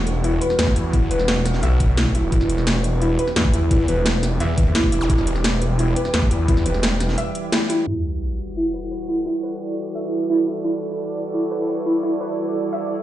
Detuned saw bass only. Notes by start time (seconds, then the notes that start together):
Already playing: E1
0.59 E2
1.11 E1
1.63 B1
1.97 B1
2.32 E1
3.36 E2
3.88 E1
4.40 E2
4.92 E1
5.10 E1
6.14 E2
6.66 E1